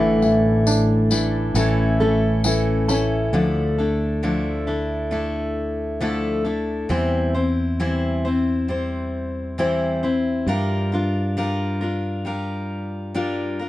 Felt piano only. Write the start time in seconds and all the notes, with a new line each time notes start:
Already playing: E3
0.22 E3
0.67 D4
1.11 E3
1.55 E3
2.00 A3
2.44 E3
2.88 C#4